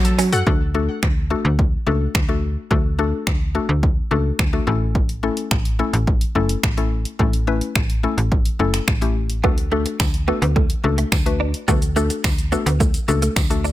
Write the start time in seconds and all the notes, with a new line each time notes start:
Already playing: F#3
0.05 A4, closed hi-hat, shaker
0.18 F#3 C#4, open hi-hat, shaker
0.32 F#2 F#4 A4 F#5, closed hi-hat, shaker
0.47 D2 A3 D4 F#4 A4, kick
0.74 A3 D4 F#4 A4
1.03 D2, finger snap, kick
1.30 A3 D4 F#4 A4
1.45 D2
1.59 kick
1.86 C#2 A3 D4 F#4 A4
2.15 D2, finger snap, kick
2.28 A3 D4 F#4 A4
2.71 D2 A3 D4 F#4 A4, kick
2.99 A3 D4 F#4 A4
3.27 D2, finger snap, kick
3.55 A3 D4 F#4 A4
3.69 D2
3.83 kick
4.11 C#2 A3 D4 F#4 A4
4.39 D2, finger snap, kick
4.53 A3 D4 F#4 A4
4.67 A1 A3 C#4 E4 A4
4.95 kick
5.09 closed hi-hat
5.23 A3 C#4 E4 A4
5.37 closed hi-hat
5.51 A1, finger snap, kick
5.65 closed hi-hat
5.79 A3 C#4 E4 A4
5.93 A1, closed hi-hat
6.07 kick
6.21 closed hi-hat
6.35 F#1 A3 C#4 E4 A4
6.49 closed hi-hat
6.63 A1, finger snap, kick
6.77 A3 C#4 E4 A4, closed hi-hat
7.05 closed hi-hat
7.19 A1 A3 C#4 E4 A4, kick
7.33 closed hi-hat
7.47 A3 C#4 E4 B4
7.61 closed hi-hat
7.75 A1, finger snap, kick
7.90 closed hi-hat
8.03 A3 C#4 E4 A4
8.18 A1, closed hi-hat
8.32 kick
8.45 closed hi-hat
8.59 F#1 A3 C#4 E4 A4
8.74 finger snap, closed hi-hat
8.88 A1, finger snap, kick
9.01 A3 C#4 E4 G4, closed hi-hat
9.30 closed hi-hat
9.43 D2 A3 B3 D4 F#4 A4, kick
9.58 closed hi-hat
9.71 A3 D4 F#4 A4
9.86 muted clean electric guitar stroke, closed hi-hat
10.00 D2, finger snap, muted clean electric guitar stroke, kick, tambourine
10.14 closed hi-hat
10.28 A3 B3 D4 F#4 A4
10.42 D2 B3, closed hi-hat
10.56 A3, kick
10.70 closed hi-hat
10.84 C#2 A3 D4 F#4 A4, muted clean electric guitar stroke
10.98 A3, closed hi-hat
11.12 D2, finger snap, kick, tambourine
11.26 A3 D4 F#4 B4, closed hi-hat
11.40 D4
11.54 closed hi-hat
11.68 D2 A3 B3 D4 F#4 A4, kick, shaker
11.82 closed hi-hat, shaker
11.96 A3 D4 F#4 A4, shaker
12.10 muted clean electric guitar stroke, closed hi-hat, shaker
12.24 D2, finger snap, muted clean electric guitar stroke, kick, tambourine, shaker
12.38 closed hi-hat, shaker
12.52 A3 B3 D4 F#4 A4, shaker
12.66 D2 B3, closed hi-hat, shaker
12.80 A3, kick, shaker
12.94 closed hi-hat, shaker
13.08 C#2 A3 D4 F#4 A4, muted clean electric guitar stroke, shaker
13.22 A3, closed hi-hat, shaker
13.36 D2, finger snap, kick, tambourine, shaker
13.50 A3 D4 F#4 A4, closed hi-hat, shaker
13.64 D4, shaker